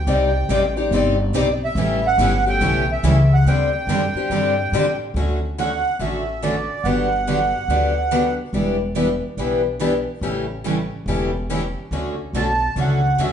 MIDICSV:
0, 0, Header, 1, 6, 480
1, 0, Start_track
1, 0, Tempo, 422833
1, 90, Time_signature, 4, 2, 24, 8
1, 15124, End_track
2, 0, Start_track
2, 0, Title_t, "Accordion"
2, 0, Program_c, 0, 21
2, 0, Note_on_c, 0, 79, 81
2, 841, Note_off_c, 0, 79, 0
2, 1863, Note_on_c, 0, 76, 90
2, 2344, Note_on_c, 0, 78, 108
2, 2345, Note_off_c, 0, 76, 0
2, 2779, Note_off_c, 0, 78, 0
2, 2829, Note_on_c, 0, 79, 116
2, 3302, Note_off_c, 0, 79, 0
2, 3314, Note_on_c, 0, 76, 86
2, 3785, Note_on_c, 0, 78, 92
2, 3790, Note_off_c, 0, 76, 0
2, 3945, Note_on_c, 0, 79, 92
2, 3948, Note_off_c, 0, 78, 0
2, 5639, Note_off_c, 0, 79, 0
2, 6358, Note_on_c, 0, 78, 92
2, 6791, Note_off_c, 0, 78, 0
2, 6823, Note_on_c, 0, 76, 67
2, 7304, Note_on_c, 0, 74, 70
2, 7310, Note_off_c, 0, 76, 0
2, 7772, Note_on_c, 0, 78, 78
2, 7791, Note_off_c, 0, 74, 0
2, 9474, Note_off_c, 0, 78, 0
2, 14037, Note_on_c, 0, 81, 90
2, 14471, Note_off_c, 0, 81, 0
2, 14539, Note_on_c, 0, 78, 76
2, 15008, Note_off_c, 0, 78, 0
2, 15014, Note_on_c, 0, 76, 65
2, 15124, Note_off_c, 0, 76, 0
2, 15124, End_track
3, 0, Start_track
3, 0, Title_t, "Steel-string acoustic guitar"
3, 0, Program_c, 1, 25
3, 2011, Note_on_c, 1, 55, 66
3, 2015, Note_on_c, 1, 64, 70
3, 2020, Note_on_c, 1, 69, 70
3, 2259, Note_off_c, 1, 55, 0
3, 2261, Note_off_c, 1, 64, 0
3, 2263, Note_off_c, 1, 69, 0
3, 2483, Note_on_c, 1, 55, 91
3, 2490, Note_on_c, 1, 69, 103
3, 2494, Note_on_c, 1, 64, 103
3, 2618, Note_off_c, 1, 55, 0
3, 2622, Note_off_c, 1, 69, 0
3, 2624, Note_off_c, 1, 64, 0
3, 2964, Note_on_c, 1, 55, 72
3, 2976, Note_on_c, 1, 64, 76
3, 2977, Note_on_c, 1, 69, 67
3, 3215, Note_off_c, 1, 55, 0
3, 3221, Note_off_c, 1, 64, 0
3, 3222, Note_off_c, 1, 69, 0
3, 3450, Note_on_c, 1, 55, 90
3, 3456, Note_on_c, 1, 64, 93
3, 3462, Note_on_c, 1, 69, 97
3, 3581, Note_off_c, 1, 55, 0
3, 3585, Note_off_c, 1, 64, 0
3, 3588, Note_off_c, 1, 69, 0
3, 5875, Note_on_c, 1, 69, 63
3, 6110, Note_off_c, 1, 69, 0
3, 6354, Note_on_c, 1, 69, 86
3, 6473, Note_off_c, 1, 69, 0
3, 6841, Note_on_c, 1, 69, 67
3, 7073, Note_off_c, 1, 69, 0
3, 7306, Note_on_c, 1, 69, 82
3, 7429, Note_off_c, 1, 69, 0
3, 9695, Note_on_c, 1, 55, 55
3, 9700, Note_on_c, 1, 64, 65
3, 9706, Note_on_c, 1, 71, 61
3, 9940, Note_off_c, 1, 55, 0
3, 9943, Note_off_c, 1, 64, 0
3, 9946, Note_off_c, 1, 71, 0
3, 10164, Note_on_c, 1, 64, 91
3, 10166, Note_on_c, 1, 55, 86
3, 10173, Note_on_c, 1, 71, 99
3, 10298, Note_off_c, 1, 64, 0
3, 10299, Note_off_c, 1, 55, 0
3, 10303, Note_off_c, 1, 71, 0
3, 10644, Note_on_c, 1, 55, 72
3, 10657, Note_on_c, 1, 64, 66
3, 10662, Note_on_c, 1, 71, 74
3, 10895, Note_off_c, 1, 55, 0
3, 10901, Note_off_c, 1, 64, 0
3, 10904, Note_off_c, 1, 71, 0
3, 11123, Note_on_c, 1, 55, 75
3, 11128, Note_on_c, 1, 64, 73
3, 11136, Note_on_c, 1, 71, 78
3, 11258, Note_off_c, 1, 55, 0
3, 11260, Note_off_c, 1, 64, 0
3, 11265, Note_off_c, 1, 71, 0
3, 11623, Note_on_c, 1, 55, 53
3, 11626, Note_on_c, 1, 69, 55
3, 11630, Note_on_c, 1, 64, 61
3, 11865, Note_off_c, 1, 55, 0
3, 11866, Note_off_c, 1, 69, 0
3, 11868, Note_off_c, 1, 64, 0
3, 12102, Note_on_c, 1, 55, 81
3, 12102, Note_on_c, 1, 69, 86
3, 12108, Note_on_c, 1, 64, 86
3, 12228, Note_off_c, 1, 55, 0
3, 12228, Note_off_c, 1, 69, 0
3, 12231, Note_off_c, 1, 64, 0
3, 12578, Note_on_c, 1, 55, 65
3, 12586, Note_on_c, 1, 69, 63
3, 12588, Note_on_c, 1, 64, 62
3, 12822, Note_off_c, 1, 55, 0
3, 12826, Note_off_c, 1, 69, 0
3, 12827, Note_off_c, 1, 64, 0
3, 13063, Note_on_c, 1, 55, 71
3, 13065, Note_on_c, 1, 64, 80
3, 13065, Note_on_c, 1, 69, 87
3, 13188, Note_off_c, 1, 55, 0
3, 13189, Note_off_c, 1, 64, 0
3, 13189, Note_off_c, 1, 69, 0
3, 13547, Note_on_c, 1, 69, 53
3, 13787, Note_off_c, 1, 69, 0
3, 14019, Note_on_c, 1, 69, 87
3, 14146, Note_off_c, 1, 69, 0
3, 14498, Note_on_c, 1, 69, 63
3, 14742, Note_off_c, 1, 69, 0
3, 14976, Note_on_c, 1, 69, 85
3, 15104, Note_off_c, 1, 69, 0
3, 15124, End_track
4, 0, Start_track
4, 0, Title_t, "Steel-string acoustic guitar"
4, 0, Program_c, 2, 25
4, 80, Note_on_c, 2, 55, 63
4, 82, Note_on_c, 2, 48, 61
4, 83, Note_on_c, 2, 63, 71
4, 86, Note_on_c, 2, 67, 75
4, 87, Note_on_c, 2, 74, 77
4, 88, Note_on_c, 2, 60, 69
4, 333, Note_off_c, 2, 55, 0
4, 334, Note_off_c, 2, 48, 0
4, 334, Note_off_c, 2, 63, 0
4, 336, Note_off_c, 2, 67, 0
4, 337, Note_off_c, 2, 60, 0
4, 337, Note_off_c, 2, 74, 0
4, 571, Note_on_c, 2, 48, 76
4, 571, Note_on_c, 2, 55, 72
4, 572, Note_on_c, 2, 63, 74
4, 577, Note_on_c, 2, 67, 82
4, 579, Note_on_c, 2, 60, 71
4, 586, Note_on_c, 2, 74, 82
4, 702, Note_off_c, 2, 48, 0
4, 702, Note_off_c, 2, 55, 0
4, 703, Note_off_c, 2, 63, 0
4, 705, Note_off_c, 2, 67, 0
4, 706, Note_off_c, 2, 60, 0
4, 709, Note_off_c, 2, 74, 0
4, 870, Note_on_c, 2, 74, 54
4, 876, Note_on_c, 2, 67, 53
4, 878, Note_on_c, 2, 63, 48
4, 884, Note_on_c, 2, 60, 41
4, 1040, Note_off_c, 2, 74, 0
4, 1043, Note_off_c, 2, 63, 0
4, 1043, Note_off_c, 2, 67, 0
4, 1047, Note_off_c, 2, 60, 0
4, 1060, Note_on_c, 2, 60, 61
4, 1062, Note_on_c, 2, 55, 61
4, 1065, Note_on_c, 2, 48, 62
4, 1068, Note_on_c, 2, 67, 68
4, 1070, Note_on_c, 2, 63, 77
4, 1075, Note_on_c, 2, 74, 79
4, 1304, Note_off_c, 2, 55, 0
4, 1304, Note_off_c, 2, 60, 0
4, 1306, Note_off_c, 2, 48, 0
4, 1308, Note_off_c, 2, 67, 0
4, 1309, Note_off_c, 2, 63, 0
4, 1311, Note_off_c, 2, 74, 0
4, 1529, Note_on_c, 2, 48, 87
4, 1533, Note_on_c, 2, 55, 79
4, 1537, Note_on_c, 2, 60, 93
4, 1539, Note_on_c, 2, 67, 100
4, 1540, Note_on_c, 2, 63, 96
4, 1545, Note_on_c, 2, 74, 95
4, 1661, Note_off_c, 2, 48, 0
4, 1663, Note_off_c, 2, 55, 0
4, 1665, Note_off_c, 2, 60, 0
4, 1666, Note_off_c, 2, 67, 0
4, 1667, Note_off_c, 2, 63, 0
4, 1669, Note_off_c, 2, 74, 0
4, 2013, Note_on_c, 2, 49, 64
4, 2018, Note_on_c, 2, 52, 69
4, 2022, Note_on_c, 2, 57, 69
4, 2023, Note_on_c, 2, 61, 73
4, 2025, Note_on_c, 2, 67, 80
4, 2260, Note_off_c, 2, 49, 0
4, 2262, Note_off_c, 2, 52, 0
4, 2265, Note_off_c, 2, 57, 0
4, 2265, Note_off_c, 2, 61, 0
4, 2266, Note_off_c, 2, 67, 0
4, 2492, Note_on_c, 2, 49, 65
4, 2501, Note_on_c, 2, 52, 81
4, 2503, Note_on_c, 2, 57, 76
4, 2506, Note_on_c, 2, 61, 91
4, 2509, Note_on_c, 2, 67, 89
4, 2623, Note_off_c, 2, 49, 0
4, 2628, Note_off_c, 2, 52, 0
4, 2628, Note_off_c, 2, 57, 0
4, 2630, Note_off_c, 2, 61, 0
4, 2632, Note_off_c, 2, 67, 0
4, 2796, Note_on_c, 2, 67, 51
4, 2807, Note_on_c, 2, 61, 52
4, 2812, Note_on_c, 2, 57, 44
4, 2954, Note_off_c, 2, 57, 0
4, 2955, Note_off_c, 2, 61, 0
4, 2962, Note_on_c, 2, 49, 78
4, 2963, Note_off_c, 2, 67, 0
4, 2964, Note_on_c, 2, 52, 59
4, 2967, Note_on_c, 2, 57, 63
4, 2968, Note_on_c, 2, 61, 74
4, 2977, Note_on_c, 2, 67, 79
4, 3214, Note_off_c, 2, 49, 0
4, 3215, Note_off_c, 2, 52, 0
4, 3217, Note_off_c, 2, 57, 0
4, 3217, Note_off_c, 2, 61, 0
4, 3222, Note_off_c, 2, 67, 0
4, 3448, Note_on_c, 2, 52, 91
4, 3450, Note_on_c, 2, 49, 86
4, 3457, Note_on_c, 2, 61, 97
4, 3460, Note_on_c, 2, 57, 91
4, 3460, Note_on_c, 2, 67, 93
4, 3581, Note_off_c, 2, 49, 0
4, 3581, Note_off_c, 2, 52, 0
4, 3585, Note_off_c, 2, 61, 0
4, 3586, Note_off_c, 2, 57, 0
4, 3587, Note_off_c, 2, 67, 0
4, 3937, Note_on_c, 2, 50, 62
4, 3945, Note_on_c, 2, 55, 68
4, 3946, Note_on_c, 2, 62, 68
4, 3950, Note_on_c, 2, 60, 75
4, 3954, Note_on_c, 2, 67, 67
4, 4182, Note_off_c, 2, 50, 0
4, 4185, Note_off_c, 2, 55, 0
4, 4186, Note_off_c, 2, 62, 0
4, 4188, Note_off_c, 2, 60, 0
4, 4190, Note_off_c, 2, 67, 0
4, 4412, Note_on_c, 2, 50, 84
4, 4416, Note_on_c, 2, 55, 84
4, 4418, Note_on_c, 2, 60, 73
4, 4422, Note_on_c, 2, 62, 83
4, 4426, Note_on_c, 2, 67, 88
4, 4542, Note_off_c, 2, 50, 0
4, 4544, Note_off_c, 2, 55, 0
4, 4545, Note_off_c, 2, 60, 0
4, 4547, Note_off_c, 2, 62, 0
4, 4549, Note_off_c, 2, 67, 0
4, 4729, Note_on_c, 2, 67, 57
4, 4731, Note_on_c, 2, 62, 46
4, 4738, Note_on_c, 2, 60, 38
4, 4885, Note_off_c, 2, 62, 0
4, 4889, Note_off_c, 2, 67, 0
4, 4889, Note_on_c, 2, 50, 59
4, 4890, Note_off_c, 2, 60, 0
4, 4892, Note_on_c, 2, 55, 67
4, 4899, Note_on_c, 2, 62, 58
4, 4903, Note_on_c, 2, 60, 65
4, 4906, Note_on_c, 2, 67, 66
4, 5137, Note_off_c, 2, 50, 0
4, 5138, Note_off_c, 2, 55, 0
4, 5142, Note_off_c, 2, 62, 0
4, 5144, Note_off_c, 2, 60, 0
4, 5146, Note_off_c, 2, 67, 0
4, 5375, Note_on_c, 2, 50, 91
4, 5375, Note_on_c, 2, 55, 83
4, 5384, Note_on_c, 2, 60, 87
4, 5386, Note_on_c, 2, 62, 104
4, 5391, Note_on_c, 2, 67, 96
4, 5503, Note_off_c, 2, 55, 0
4, 5504, Note_off_c, 2, 50, 0
4, 5508, Note_off_c, 2, 60, 0
4, 5509, Note_off_c, 2, 62, 0
4, 5511, Note_off_c, 2, 67, 0
4, 5859, Note_on_c, 2, 50, 54
4, 5861, Note_on_c, 2, 57, 65
4, 5863, Note_on_c, 2, 54, 65
4, 5863, Note_on_c, 2, 61, 63
4, 5867, Note_on_c, 2, 66, 54
4, 6102, Note_off_c, 2, 50, 0
4, 6103, Note_off_c, 2, 57, 0
4, 6104, Note_off_c, 2, 54, 0
4, 6104, Note_off_c, 2, 61, 0
4, 6106, Note_off_c, 2, 66, 0
4, 6338, Note_on_c, 2, 50, 59
4, 6339, Note_on_c, 2, 57, 74
4, 6340, Note_on_c, 2, 54, 76
4, 6343, Note_on_c, 2, 66, 71
4, 6349, Note_on_c, 2, 61, 72
4, 6465, Note_off_c, 2, 50, 0
4, 6465, Note_off_c, 2, 57, 0
4, 6466, Note_off_c, 2, 54, 0
4, 6468, Note_off_c, 2, 66, 0
4, 6470, Note_off_c, 2, 61, 0
4, 6804, Note_on_c, 2, 50, 57
4, 6811, Note_on_c, 2, 54, 64
4, 6815, Note_on_c, 2, 61, 68
4, 6819, Note_on_c, 2, 57, 66
4, 6822, Note_on_c, 2, 66, 64
4, 7055, Note_off_c, 2, 50, 0
4, 7058, Note_off_c, 2, 54, 0
4, 7060, Note_off_c, 2, 61, 0
4, 7062, Note_off_c, 2, 57, 0
4, 7063, Note_off_c, 2, 66, 0
4, 7294, Note_on_c, 2, 50, 78
4, 7299, Note_on_c, 2, 54, 72
4, 7301, Note_on_c, 2, 57, 78
4, 7304, Note_on_c, 2, 66, 76
4, 7307, Note_on_c, 2, 61, 86
4, 7423, Note_off_c, 2, 50, 0
4, 7425, Note_off_c, 2, 54, 0
4, 7426, Note_off_c, 2, 57, 0
4, 7428, Note_off_c, 2, 66, 0
4, 7429, Note_off_c, 2, 61, 0
4, 7778, Note_on_c, 2, 50, 60
4, 7781, Note_on_c, 2, 59, 64
4, 7783, Note_on_c, 2, 54, 58
4, 7784, Note_on_c, 2, 62, 60
4, 7788, Note_on_c, 2, 67, 70
4, 8021, Note_off_c, 2, 50, 0
4, 8023, Note_off_c, 2, 59, 0
4, 8024, Note_off_c, 2, 54, 0
4, 8024, Note_off_c, 2, 62, 0
4, 8026, Note_off_c, 2, 67, 0
4, 8256, Note_on_c, 2, 50, 65
4, 8258, Note_on_c, 2, 54, 68
4, 8259, Note_on_c, 2, 59, 72
4, 8259, Note_on_c, 2, 62, 80
4, 8264, Note_on_c, 2, 67, 77
4, 8384, Note_off_c, 2, 50, 0
4, 8385, Note_off_c, 2, 54, 0
4, 8385, Note_off_c, 2, 59, 0
4, 8385, Note_off_c, 2, 62, 0
4, 8388, Note_off_c, 2, 67, 0
4, 8737, Note_on_c, 2, 50, 60
4, 8741, Note_on_c, 2, 54, 65
4, 8743, Note_on_c, 2, 59, 66
4, 8746, Note_on_c, 2, 62, 67
4, 8750, Note_on_c, 2, 67, 66
4, 8981, Note_off_c, 2, 50, 0
4, 8983, Note_off_c, 2, 54, 0
4, 8984, Note_off_c, 2, 59, 0
4, 8986, Note_off_c, 2, 62, 0
4, 8988, Note_off_c, 2, 67, 0
4, 9207, Note_on_c, 2, 50, 80
4, 9213, Note_on_c, 2, 54, 89
4, 9215, Note_on_c, 2, 62, 83
4, 9216, Note_on_c, 2, 59, 91
4, 9219, Note_on_c, 2, 67, 85
4, 9340, Note_off_c, 2, 50, 0
4, 9343, Note_off_c, 2, 54, 0
4, 9344, Note_off_c, 2, 59, 0
4, 9344, Note_off_c, 2, 62, 0
4, 9345, Note_off_c, 2, 67, 0
4, 9692, Note_on_c, 2, 52, 59
4, 9694, Note_on_c, 2, 59, 58
4, 9698, Note_on_c, 2, 62, 60
4, 9704, Note_on_c, 2, 67, 68
4, 9939, Note_off_c, 2, 52, 0
4, 9940, Note_off_c, 2, 59, 0
4, 9942, Note_off_c, 2, 62, 0
4, 9945, Note_off_c, 2, 67, 0
4, 10172, Note_on_c, 2, 59, 71
4, 10176, Note_on_c, 2, 52, 71
4, 10179, Note_on_c, 2, 62, 80
4, 10182, Note_on_c, 2, 67, 76
4, 10302, Note_off_c, 2, 59, 0
4, 10304, Note_off_c, 2, 52, 0
4, 10305, Note_off_c, 2, 62, 0
4, 10307, Note_off_c, 2, 67, 0
4, 10662, Note_on_c, 2, 62, 62
4, 10663, Note_on_c, 2, 52, 62
4, 10663, Note_on_c, 2, 59, 66
4, 10671, Note_on_c, 2, 67, 64
4, 10904, Note_off_c, 2, 62, 0
4, 10905, Note_off_c, 2, 52, 0
4, 10905, Note_off_c, 2, 59, 0
4, 10908, Note_off_c, 2, 67, 0
4, 11130, Note_on_c, 2, 59, 86
4, 11135, Note_on_c, 2, 52, 88
4, 11135, Note_on_c, 2, 62, 87
4, 11143, Note_on_c, 2, 67, 85
4, 11262, Note_off_c, 2, 59, 0
4, 11264, Note_off_c, 2, 52, 0
4, 11264, Note_off_c, 2, 62, 0
4, 11268, Note_off_c, 2, 67, 0
4, 11607, Note_on_c, 2, 49, 54
4, 11610, Note_on_c, 2, 57, 62
4, 11611, Note_on_c, 2, 52, 61
4, 11612, Note_on_c, 2, 67, 69
4, 11614, Note_on_c, 2, 61, 63
4, 11856, Note_off_c, 2, 49, 0
4, 11858, Note_off_c, 2, 57, 0
4, 11859, Note_off_c, 2, 52, 0
4, 11859, Note_off_c, 2, 67, 0
4, 11860, Note_off_c, 2, 61, 0
4, 12081, Note_on_c, 2, 52, 73
4, 12084, Note_on_c, 2, 49, 71
4, 12084, Note_on_c, 2, 67, 77
4, 12089, Note_on_c, 2, 57, 69
4, 12090, Note_on_c, 2, 61, 79
4, 12217, Note_off_c, 2, 52, 0
4, 12218, Note_off_c, 2, 49, 0
4, 12218, Note_off_c, 2, 67, 0
4, 12221, Note_off_c, 2, 57, 0
4, 12222, Note_off_c, 2, 61, 0
4, 12575, Note_on_c, 2, 49, 63
4, 12581, Note_on_c, 2, 57, 57
4, 12582, Note_on_c, 2, 52, 59
4, 12582, Note_on_c, 2, 61, 63
4, 12590, Note_on_c, 2, 67, 75
4, 12821, Note_off_c, 2, 49, 0
4, 12823, Note_off_c, 2, 57, 0
4, 12824, Note_off_c, 2, 52, 0
4, 12824, Note_off_c, 2, 61, 0
4, 12828, Note_off_c, 2, 67, 0
4, 13050, Note_on_c, 2, 49, 74
4, 13054, Note_on_c, 2, 52, 85
4, 13054, Note_on_c, 2, 57, 81
4, 13059, Note_on_c, 2, 67, 94
4, 13060, Note_on_c, 2, 61, 88
4, 13181, Note_off_c, 2, 49, 0
4, 13184, Note_off_c, 2, 52, 0
4, 13184, Note_off_c, 2, 57, 0
4, 13186, Note_off_c, 2, 61, 0
4, 13186, Note_off_c, 2, 67, 0
4, 13538, Note_on_c, 2, 50, 66
4, 13540, Note_on_c, 2, 57, 63
4, 13541, Note_on_c, 2, 54, 59
4, 13541, Note_on_c, 2, 61, 63
4, 13545, Note_on_c, 2, 66, 68
4, 13782, Note_off_c, 2, 50, 0
4, 13783, Note_off_c, 2, 54, 0
4, 13783, Note_off_c, 2, 57, 0
4, 13783, Note_off_c, 2, 61, 0
4, 13786, Note_off_c, 2, 66, 0
4, 14019, Note_on_c, 2, 50, 69
4, 14025, Note_on_c, 2, 57, 77
4, 14027, Note_on_c, 2, 54, 68
4, 14033, Note_on_c, 2, 61, 72
4, 14035, Note_on_c, 2, 66, 72
4, 14146, Note_off_c, 2, 50, 0
4, 14149, Note_off_c, 2, 57, 0
4, 14150, Note_off_c, 2, 54, 0
4, 14153, Note_off_c, 2, 61, 0
4, 14154, Note_off_c, 2, 66, 0
4, 14502, Note_on_c, 2, 50, 61
4, 14508, Note_on_c, 2, 54, 66
4, 14512, Note_on_c, 2, 61, 63
4, 14515, Note_on_c, 2, 57, 63
4, 14515, Note_on_c, 2, 66, 67
4, 14744, Note_off_c, 2, 50, 0
4, 14747, Note_off_c, 2, 54, 0
4, 14749, Note_off_c, 2, 61, 0
4, 14750, Note_off_c, 2, 57, 0
4, 14751, Note_off_c, 2, 66, 0
4, 14982, Note_on_c, 2, 50, 78
4, 14985, Note_on_c, 2, 54, 85
4, 14988, Note_on_c, 2, 57, 75
4, 14992, Note_on_c, 2, 61, 87
4, 14994, Note_on_c, 2, 66, 90
4, 15107, Note_off_c, 2, 50, 0
4, 15109, Note_off_c, 2, 54, 0
4, 15110, Note_off_c, 2, 57, 0
4, 15112, Note_off_c, 2, 61, 0
4, 15113, Note_off_c, 2, 66, 0
4, 15124, End_track
5, 0, Start_track
5, 0, Title_t, "Upright bass"
5, 0, Program_c, 3, 32
5, 76, Note_on_c, 3, 36, 80
5, 549, Note_off_c, 3, 36, 0
5, 554, Note_on_c, 3, 33, 86
5, 1025, Note_off_c, 3, 33, 0
5, 1032, Note_on_c, 3, 31, 83
5, 1504, Note_off_c, 3, 31, 0
5, 1511, Note_on_c, 3, 35, 71
5, 1981, Note_off_c, 3, 35, 0
5, 1988, Note_on_c, 3, 33, 91
5, 2465, Note_off_c, 3, 33, 0
5, 2471, Note_on_c, 3, 31, 94
5, 2947, Note_off_c, 3, 31, 0
5, 2960, Note_on_c, 3, 35, 78
5, 3431, Note_off_c, 3, 35, 0
5, 3442, Note_on_c, 3, 37, 82
5, 3909, Note_off_c, 3, 37, 0
5, 3915, Note_on_c, 3, 38, 76
5, 4388, Note_off_c, 3, 38, 0
5, 4393, Note_on_c, 3, 42, 88
5, 4687, Note_off_c, 3, 42, 0
5, 4879, Note_on_c, 3, 43, 73
5, 5350, Note_off_c, 3, 43, 0
5, 5361, Note_on_c, 3, 45, 74
5, 5831, Note_off_c, 3, 45, 0
5, 5836, Note_on_c, 3, 38, 82
5, 6609, Note_off_c, 3, 38, 0
5, 6804, Note_on_c, 3, 33, 61
5, 7574, Note_off_c, 3, 33, 0
5, 7762, Note_on_c, 3, 31, 79
5, 8533, Note_off_c, 3, 31, 0
5, 8719, Note_on_c, 3, 38, 65
5, 9491, Note_off_c, 3, 38, 0
5, 9682, Note_on_c, 3, 28, 83
5, 10453, Note_off_c, 3, 28, 0
5, 10639, Note_on_c, 3, 35, 68
5, 11411, Note_off_c, 3, 35, 0
5, 11594, Note_on_c, 3, 33, 79
5, 12369, Note_off_c, 3, 33, 0
5, 12553, Note_on_c, 3, 28, 76
5, 13328, Note_off_c, 3, 28, 0
5, 13520, Note_on_c, 3, 38, 81
5, 13908, Note_off_c, 3, 38, 0
5, 14001, Note_on_c, 3, 35, 74
5, 14413, Note_off_c, 3, 35, 0
5, 14481, Note_on_c, 3, 37, 74
5, 14893, Note_off_c, 3, 37, 0
5, 14966, Note_on_c, 3, 38, 60
5, 15124, Note_off_c, 3, 38, 0
5, 15124, End_track
6, 0, Start_track
6, 0, Title_t, "Muted upright bass strokes"
6, 4708, Note_on_c, 9, 29, 37
6, 4822, Note_off_c, 9, 29, 0
6, 15124, End_track
0, 0, End_of_file